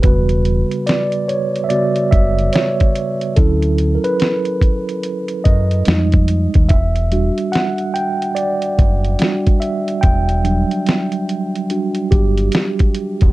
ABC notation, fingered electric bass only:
X:1
M:4/4
L:1/16
Q:"Swing 16ths" 1/4=72
K:Edor
V:1 name="Fingered electric bass" clef=bass
E,,,3 z6 z F,,,2 z4 | D,,3 z6 z F,,2 =F,,3 _E,, | E,,,3 z6 z F,,,2 z4 | E,,,3 z6 z G,,,2 z3 ^D,,, |]